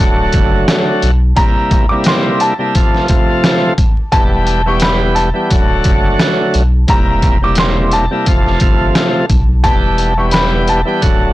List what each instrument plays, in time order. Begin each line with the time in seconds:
Already playing: upright piano A5
0.00 sub bass D1, tonewheel organ D3 F#3 A3 F#4, kick
0.33 sub bass F#1, kick, closed hi-hat
0.68 cross-stick, snare, closed hi-hat
1.02 sub bass B1, closed hi-hat
1.36 tonewheel organ C3 G3 A#3 E4, upright piano A#5, kick, closed hi-hat
1.71 kick, closed hi-hat
1.89 tonewheel organ C3 G3 A#3 E4, upright piano D6
2.04 upright piano C6, cross-stick, snare, closed hi-hat
2.40 upright piano A5, closed hi-hat
2.58 tonewheel organ C3 G3 A#3 E4
2.75 tonewheel organ C3 F3 A3 F4, kick, closed hi-hat
2.94 snare
3.08 tonewheel organ C3 F3 A3 F4, kick, closed hi-hat
3.44 cross-stick, snare, closed hi-hat
3.78 kick, closed hi-hat
4.12 sub bass E1, tonewheel organ E3 G3 B3 G4, upright piano A5, kick, closed hi-hat
4.47 closed hi-hat
4.66 tonewheel organ E3 G3 B3 G4, upright piano C#6
4.80 upright piano B5, cross-stick, snare, closed hi-hat
5.15 upright piano A5, closed hi-hat
5.34 tonewheel organ E3 G3 B3 G4
5.50 sub bass D1, tonewheel organ D3 F#3 A3 F#4, kick, closed hi-hat
5.84 sub bass F#1, kick, closed hi-hat
6.19 cross-stick, snare, closed hi-hat
6.54 sub bass B1, closed hi-hat
6.87 sub bass E1, tonewheel organ C3 G3 A#3 E4, upright piano A#5, kick, closed hi-hat
7.22 kick, closed hi-hat
7.42 tonewheel organ C3 G3 A#3 E4, upright piano D6
7.55 cross-stick, snare, closed hi-hat
7.59 upright piano C6
7.91 upright piano A5, closed hi-hat
8.11 tonewheel organ C3 G3 A#3 E4
8.26 sub bass F1, tonewheel organ C3 F3 A3 F4, kick, closed hi-hat
8.46 snare
8.60 sub bass G1, tonewheel organ C3 F3 A3 F4, kick, closed hi-hat
8.95 cross-stick, snare, closed hi-hat
9.30 sub bass B1, kick, closed hi-hat
9.64 sub bass E1, tonewheel organ E3 G3 B3 G4, upright piano A5, kick, closed hi-hat
9.98 closed hi-hat
10.17 tonewheel organ E3 G3 B3 G4, upright piano C#6
10.31 upright piano B5, cross-stick, snare, closed hi-hat
10.68 upright piano A5, closed hi-hat
10.85 tonewheel organ E3 G3 B3 G4
11.01 sub bass D1, tonewheel organ D3 F#3 A3 F#4, kick, closed hi-hat